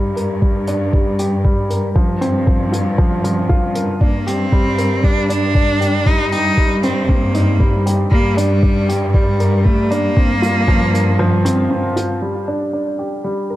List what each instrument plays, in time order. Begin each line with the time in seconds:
Already playing: cello section G2, upright piano G3
0.16 upright piano A#4, closed hi-hat
0.42 upright piano G3, kick
0.67 upright piano D4, closed hi-hat
0.93 upright piano G3, kick
1.19 upright piano G4, closed hi-hat
1.44 upright piano G3, kick
1.70 upright piano A#4, closed hi-hat
1.95 cello section G2, upright piano F3, kick
2.21 upright piano C4, closed hi-hat
2.47 upright piano F3, kick
2.72 upright piano F4, closed hi-hat
2.98 upright piano F3, kick
3.24 upright piano F3, closed hi-hat
3.49 upright piano F4, kick
3.75 upright piano A#4, closed hi-hat
4.01 cello section G2, cello A#3, upright piano D4, kick
4.27 cello C4, upright piano G4, closed hi-hat
4.52 upright piano G3, kick
4.78 upright piano A#4, closed hi-hat
5.04 upright piano G3, cello D4, kick
5.29 upright piano D4, cello D4, closed hi-hat
5.55 upright piano D4, kick
5.80 upright piano G4, closed hi-hat
6.06 cello section G2, upright piano G3, cello D#4, kick
6.32 cello D#4, upright piano G4, closed hi-hat
6.58 upright piano G3, kick
6.83 upright piano C4, cello C4, closed hi-hat
7.09 cello A#3, upright piano C4, kick
7.34 upright piano D#4, closed hi-hat
7.60 upright piano G3, kick
7.86 upright piano G4, closed hi-hat
8.11 cello section G2, upright piano G3, cello A#3, kick
8.37 cello G3, upright piano D4, closed hi-hat
8.63 upright piano D4, kick
8.89 upright piano G4, closed hi-hat
9.13 cello G3, upright piano G3, kick
9.40 upright piano A#4, closed hi-hat
9.64 upright piano G3, cello A3, kick
9.90 cello A#3, upright piano D4, closed hi-hat
10.17 cello section G2, upright piano C4, kick
10.42 upright piano F4, closed hi-hat
10.68 upright piano F3, kick
10.93 upright piano A#4, closed hi-hat
11.19 upright piano F3
11.45 upright piano C4, closed hi-hat
11.71 upright piano C4
11.96 upright piano F4, closed hi-hat
12.22 upright piano G3
12.48 upright piano D4
12.73 upright piano D4
12.99 upright piano G4
13.24 upright piano G3
13.50 upright piano A#4